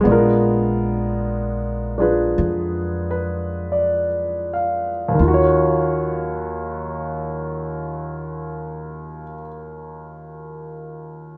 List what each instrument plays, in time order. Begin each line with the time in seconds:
0.01 grand piano G#3 B3
0.05 upright bass A#1, grand piano D4
0.09 grand piano F4 A#4
1.98 grand piano D4 F4 G#4 B4
2.38 upright bass F2
3.11 grand piano B4
3.72 grand piano D5
4.54 grand piano F5
5.08 grand piano D#2
5.15 grand piano D#3
5.19 upright bass D#2, grand piano F4
5.28 grand piano F#4
5.34 grand piano C#5